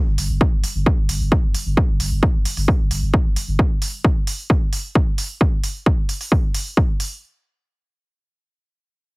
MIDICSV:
0, 0, Header, 1, 3, 480
1, 0, Start_track
1, 0, Tempo, 454545
1, 1871, Time_signature, 4, 2, 24, 8
1, 9681, End_track
2, 0, Start_track
2, 0, Title_t, "Sub bass"
2, 0, Program_c, 0, 38
2, 76, Note_on_c, 0, 31, 76
2, 185, Note_off_c, 0, 31, 0
2, 192, Note_on_c, 0, 31, 97
2, 309, Note_off_c, 0, 31, 0
2, 315, Note_on_c, 0, 31, 81
2, 429, Note_off_c, 0, 31, 0
2, 555, Note_on_c, 0, 31, 73
2, 669, Note_off_c, 0, 31, 0
2, 795, Note_on_c, 0, 31, 82
2, 909, Note_off_c, 0, 31, 0
2, 1035, Note_on_c, 0, 31, 77
2, 1145, Note_off_c, 0, 31, 0
2, 1151, Note_on_c, 0, 31, 100
2, 1269, Note_off_c, 0, 31, 0
2, 1275, Note_on_c, 0, 31, 78
2, 1389, Note_off_c, 0, 31, 0
2, 1516, Note_on_c, 0, 31, 75
2, 1629, Note_off_c, 0, 31, 0
2, 1755, Note_on_c, 0, 31, 81
2, 1869, Note_off_c, 0, 31, 0
2, 1996, Note_on_c, 0, 31, 76
2, 2106, Note_off_c, 0, 31, 0
2, 2112, Note_on_c, 0, 31, 97
2, 2229, Note_off_c, 0, 31, 0
2, 2235, Note_on_c, 0, 31, 80
2, 2349, Note_off_c, 0, 31, 0
2, 2475, Note_on_c, 0, 31, 75
2, 2589, Note_off_c, 0, 31, 0
2, 2715, Note_on_c, 0, 31, 80
2, 2829, Note_off_c, 0, 31, 0
2, 2955, Note_on_c, 0, 31, 74
2, 3065, Note_off_c, 0, 31, 0
2, 3072, Note_on_c, 0, 31, 99
2, 3189, Note_off_c, 0, 31, 0
2, 3195, Note_on_c, 0, 31, 80
2, 3309, Note_off_c, 0, 31, 0
2, 3435, Note_on_c, 0, 31, 75
2, 3549, Note_off_c, 0, 31, 0
2, 3675, Note_on_c, 0, 31, 81
2, 3789, Note_off_c, 0, 31, 0
2, 9681, End_track
3, 0, Start_track
3, 0, Title_t, "Drums"
3, 191, Note_on_c, 9, 46, 105
3, 297, Note_off_c, 9, 46, 0
3, 432, Note_on_c, 9, 36, 121
3, 537, Note_off_c, 9, 36, 0
3, 672, Note_on_c, 9, 46, 105
3, 777, Note_off_c, 9, 46, 0
3, 912, Note_on_c, 9, 36, 118
3, 1017, Note_off_c, 9, 36, 0
3, 1152, Note_on_c, 9, 46, 109
3, 1257, Note_off_c, 9, 46, 0
3, 1392, Note_on_c, 9, 36, 113
3, 1497, Note_off_c, 9, 36, 0
3, 1632, Note_on_c, 9, 46, 106
3, 1738, Note_off_c, 9, 46, 0
3, 1872, Note_on_c, 9, 36, 109
3, 1977, Note_off_c, 9, 36, 0
3, 2112, Note_on_c, 9, 46, 99
3, 2218, Note_off_c, 9, 46, 0
3, 2352, Note_on_c, 9, 36, 115
3, 2457, Note_off_c, 9, 36, 0
3, 2592, Note_on_c, 9, 46, 97
3, 2697, Note_off_c, 9, 46, 0
3, 2716, Note_on_c, 9, 46, 57
3, 2822, Note_off_c, 9, 46, 0
3, 2832, Note_on_c, 9, 36, 111
3, 2937, Note_off_c, 9, 36, 0
3, 3072, Note_on_c, 9, 46, 106
3, 3178, Note_off_c, 9, 46, 0
3, 3312, Note_on_c, 9, 36, 111
3, 3417, Note_off_c, 9, 36, 0
3, 3552, Note_on_c, 9, 46, 99
3, 3658, Note_off_c, 9, 46, 0
3, 3792, Note_on_c, 9, 36, 110
3, 3897, Note_off_c, 9, 36, 0
3, 4032, Note_on_c, 9, 46, 94
3, 4137, Note_off_c, 9, 46, 0
3, 4272, Note_on_c, 9, 36, 113
3, 4377, Note_off_c, 9, 36, 0
3, 4512, Note_on_c, 9, 46, 99
3, 4617, Note_off_c, 9, 46, 0
3, 4751, Note_on_c, 9, 36, 110
3, 4857, Note_off_c, 9, 36, 0
3, 4991, Note_on_c, 9, 46, 100
3, 5097, Note_off_c, 9, 46, 0
3, 5231, Note_on_c, 9, 36, 108
3, 5337, Note_off_c, 9, 36, 0
3, 5471, Note_on_c, 9, 46, 100
3, 5577, Note_off_c, 9, 46, 0
3, 5711, Note_on_c, 9, 36, 109
3, 5817, Note_off_c, 9, 36, 0
3, 5951, Note_on_c, 9, 46, 97
3, 6057, Note_off_c, 9, 46, 0
3, 6191, Note_on_c, 9, 36, 115
3, 6297, Note_off_c, 9, 36, 0
3, 6431, Note_on_c, 9, 46, 98
3, 6537, Note_off_c, 9, 46, 0
3, 6555, Note_on_c, 9, 46, 57
3, 6661, Note_off_c, 9, 46, 0
3, 6671, Note_on_c, 9, 36, 115
3, 6777, Note_off_c, 9, 36, 0
3, 6911, Note_on_c, 9, 46, 102
3, 7017, Note_off_c, 9, 46, 0
3, 7151, Note_on_c, 9, 36, 107
3, 7257, Note_off_c, 9, 36, 0
3, 7392, Note_on_c, 9, 46, 101
3, 7497, Note_off_c, 9, 46, 0
3, 9681, End_track
0, 0, End_of_file